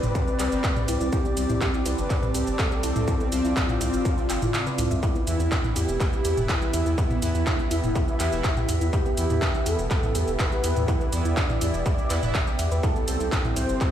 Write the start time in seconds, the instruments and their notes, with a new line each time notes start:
Already playing: analog polysynth C3 G3 C4, analog synth pad C4 D5 G5 D6, ambient pad C4 D5, analog synth lead B4
0.03 analog synth bass G1, mid tom, shaker
0.15 kick, shaker
0.28 shaker
0.39 analog synth bass C2, analog polysynth C3 G3 C4, synth arpeggio sound G4, clap, open hi-hat, shaker
0.52 analog synth bass G1, analog polysynth C3 G3 C4, shaker
0.64 kick, clap, shaker
0.76 synth arpeggio sound G4, mid tom, shaker
0.88 analog synth bass C2, synth arpeggio sound E4, open hi-hat, shaker
1.01 analog synth bass C2, synth arpeggio sound E4, shaker
1.12 synth arpeggio sound E4, analog synth lead G4, analog synth pad A5, kick, shaker
1.25 synth arpeggio sound B3, shaker
1.37 analog synth bass C2, analog polysynth C3 G3 C4, open hi-hat, shaker
1.50 analog synth bass C2, synth arpeggio sound E4, mid tom, shaker
1.61 synth arpeggio sound D4, kick, clap, shaker
1.74 synth arpeggio sound E4, shaker
1.86 analog synth bass C2, synth arpeggio sound E4, analog synth lead B4, open hi-hat, shaker
1.98 analog synth bass G1, shaker
2.10 kick, clap, shaker
2.23 mid tom, shaker
2.35 analog synth bass C2, synth arpeggio sound G4, open hi-hat, shaker
2.47 analog synth bass G1, shaker
2.59 analog synth lead A4, kick, clap, shaker
2.71 synth arpeggio sound G4, shaker
2.83 analog synth bass C2, synth arpeggio sound E4, open hi-hat, shaker
2.96 analog synth bass C2, synth arpeggio sound E4, mid tom, shaker
3.08 synth arpeggio sound E4, kick, shaker
3.20 synth arpeggio sound B3, shaker
3.32 analog synth bass C2, analog polysynth C3 G3 C4, analog synth lead F4, open hi-hat, shaker
3.45 analog synth bass C2, synth arpeggio sound E4, shaker
3.56 synth arpeggio sound D4, kick, clap, shaker
3.69 synth arpeggio sound E4, mid tom, shaker
3.81 analog synth bass C2, synth arpeggio sound E4, open hi-hat, shaker
3.93 analog synth bass G1, shaker
4.05 kick, shaker
4.18 shaker
4.30 analog synth bass G1, synth arpeggio sound G5, clap, open hi-hat, shaker
4.42 analog synth bass G1, synth arpeggio sound E4, mid tom, shaker
4.54 clap, high tom, shaker
4.67 synth arpeggio sound B4, high tom, shaker
4.78 analog synth bass C2, synth arpeggio sound E4, open hi-hat, mid tom, shaker
4.91 analog synth bass C2, synth arpeggio sound E5, mid tom, shaker
5.03 ambient pad B3, analog synth lead E4, synth arpeggio sound E4, analog synth pad B4 E5 G5 E6, kick, shaker
5.15 synth arpeggio sound B3, ambient pad E5, shaker
5.27 analog synth bass E2, analog polysynth E3 B3 E4, open hi-hat, shaker
5.38 analog synth bass E2, synth arpeggio sound E4, ambient pad G4 G5, shaker
5.52 synth arpeggio sound D4, kick, clap, shaker
5.64 synth arpeggio sound E4, mid tom, shaker
5.76 analog synth bass E2, synth arpeggio sound E4, analog synth lead G4, open hi-hat, shaker
5.89 analog synth bass E1, shaker
6.00 kick, clap, shaker
6.13 shaker
6.25 analog synth bass E2, synth arpeggio sound G4, open hi-hat, shaker
6.37 analog synth bass E1, mid tom, shaker
6.49 analog synth lead E4, kick, clap, shaker
6.62 synth arpeggio sound G4, shaker
6.74 analog synth bass E2, synth arpeggio sound E4, open hi-hat, shaker
6.86 analog synth bass E2, synth arpeggio sound E4, shaker
6.98 synth arpeggio sound E4, kick, shaker
7.11 synth arpeggio sound B3, mid tom, shaker
7.22 analog synth bass E2, analog polysynth E3 B3 E4, analog synth lead E4, open hi-hat, shaker
7.35 analog synth bass E2, synth arpeggio sound E4, shaker
7.47 synth arpeggio sound D4, kick, clap, shaker
7.59 synth arpeggio sound E4, shaker
7.71 analog synth bass E2, synth arpeggio sound E4, open hi-hat, shaker
7.84 analog synth bass E1, mid tom, shaker
7.95 kick, shaker
8.08 shaker
8.20 analog synth bass E2, analog polysynth E3 B3 E4, synth arpeggio sound G4, clap, open hi-hat, shaker
8.32 analog synth bass E1, analog polysynth E3 B3 E4, shaker
8.44 kick, clap, shaker
8.57 synth arpeggio sound G4, mid tom, shaker
8.69 analog synth bass E2, synth arpeggio sound E4, open hi-hat, shaker
8.81 analog synth bass E2, synth arpeggio sound E4, shaker
8.93 synth arpeggio sound E4, analog synth lead G4, kick, shaker
9.06 synth arpeggio sound B3, shaker
9.17 analog synth bass E2, analog polysynth E3 B3 E4, open hi-hat, shaker
9.30 analog synth bass E2, synth arpeggio sound E4, mid tom, shaker
9.42 synth arpeggio sound D4, kick, clap, shaker
9.54 synth arpeggio sound E4, shaker
9.66 analog synth bass E2, synth arpeggio sound E4, analog synth lead A4, open hi-hat, shaker
9.79 analog synth bass E1, shaker
9.91 kick, clap, shaker
10.03 mid tom, shaker
10.15 analog synth bass E2, synth arpeggio sound G4, open hi-hat, shaker
10.28 analog synth bass E1, shaker
10.39 analog synth lead B4, kick, clap, shaker
10.52 synth arpeggio sound G4, shaker
10.64 analog synth bass E2, synth arpeggio sound E4, open hi-hat, shaker
10.76 analog synth bass E2, synth arpeggio sound E4, mid tom, shaker
10.88 synth arpeggio sound E4, kick, shaker
11.01 synth arpeggio sound B3, shaker
11.13 analog synth bass E2, analog polysynth E3 B3 E4, analog synth lead D5, open hi-hat, shaker
11.25 analog synth bass E2, synth arpeggio sound E4, shaker
11.37 synth arpeggio sound D4, kick, clap, shaker
11.49 synth arpeggio sound E4, mid tom, shaker
11.61 analog synth bass E2, synth arpeggio sound E4, open hi-hat, shaker
11.74 analog synth bass E1, shaker
11.86 kick, shaker
11.98 shaker
12.10 analog synth bass E2, analog polysynth E3 B3 E4, synth arpeggio sound B4, clap, open hi-hat, shaker
12.23 analog synth bass E1, analog polysynth E3 B3 E4, mid tom, shaker
12.35 kick, clap, shaker
12.47 synth arpeggio sound G5, shaker
12.59 analog synth bass E2, synth arpeggio sound E5, open hi-hat, shaker
12.71 analog synth bass E2, synth arpeggio sound B4, shaker
12.83 ambient pad C4, analog synth pad C4 D5 D6, synth arpeggio sound E4, analog synth lead A4, kick, shaker
12.96 synth arpeggio sound B3, shaker
13.08 analog synth bass C2, analog polysynth C3 G3 C4, open hi-hat, shaker
13.20 analog synth bass C2, synth arpeggio sound E4, ambient pad D5, shaker
13.32 synth arpeggio sound D4, kick, clap, shaker
13.45 synth arpeggio sound E4, mid tom, shaker
13.56 analog synth bass C2, synth arpeggio sound E4, analog synth lead C5, open hi-hat, shaker
13.69 analog synth bass G1, shaker
13.81 kick, clap, shaker